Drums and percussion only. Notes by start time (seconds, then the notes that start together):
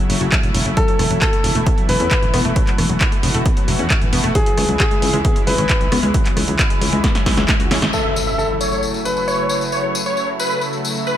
0.10 open hi-hat
0.21 closed hi-hat
0.32 kick, clap, closed hi-hat
0.43 closed hi-hat
0.54 open hi-hat
0.66 closed hi-hat
0.77 kick, closed hi-hat
0.88 closed hi-hat
0.99 cross-stick, open hi-hat
1.10 closed hi-hat
1.22 kick, cross-stick, clap, closed hi-hat
1.33 closed hi-hat
1.44 open hi-hat
1.55 closed hi-hat
1.66 kick, closed hi-hat
1.78 closed hi-hat
1.89 open hi-hat
2.00 closed hi-hat
2.11 kick, clap, closed hi-hat
2.22 closed hi-hat
2.34 cross-stick, open hi-hat
2.45 closed hi-hat
2.56 kick, closed hi-hat
2.67 clap, closed hi-hat
2.78 cross-stick, open hi-hat
2.90 closed hi-hat
3.01 kick, cross-stick, clap, closed hi-hat
3.12 closed hi-hat
3.23 open hi-hat
3.34 closed hi-hat
3.46 kick, closed hi-hat
3.57 closed hi-hat
3.68 open hi-hat
3.79 closed hi-hat
3.90 kick, clap, closed hi-hat
4.02 closed hi-hat
4.13 open hi-hat
4.24 closed hi-hat
4.35 kick, closed hi-hat
4.46 closed hi-hat
4.58 cross-stick, open hi-hat
4.69 closed hi-hat
4.80 kick, cross-stick, clap, closed hi-hat
4.91 closed hi-hat
5.02 open hi-hat
5.14 closed hi-hat
5.25 kick, closed hi-hat
5.36 closed hi-hat
5.47 open hi-hat
5.58 closed hi-hat
5.70 kick, clap, closed hi-hat
5.81 closed hi-hat
5.92 cross-stick, open hi-hat
6.03 closed hi-hat
6.14 kick, closed hi-hat
6.26 clap, closed hi-hat
6.37 cross-stick, open hi-hat
6.48 closed hi-hat
6.59 kick, cross-stick, clap, closed hi-hat
6.70 closed hi-hat
6.81 open hi-hat
6.93 closed hi-hat
7.04 kick, snare, closed hi-hat
7.15 snare, closed hi-hat
7.26 kick, snare, open hi-hat
7.37 snare, closed hi-hat
7.49 kick, snare, clap, closed hi-hat
7.60 closed hi-hat
7.71 snare, open hi-hat
7.82 snare, closed hi-hat
7.93 crash, tambourine
8.16 tambourine
8.27 tambourine
8.39 tambourine
8.61 tambourine
8.72 tambourine
8.83 tambourine
8.94 tambourine
9.05 tambourine
9.17 tambourine
9.28 tambourine
9.49 tambourine
9.61 tambourine
9.72 tambourine
9.95 tambourine
10.06 tambourine
10.17 tambourine
10.40 tambourine
10.51 tambourine
10.61 tambourine
10.73 tambourine
10.85 tambourine
10.95 tambourine
11.07 tambourine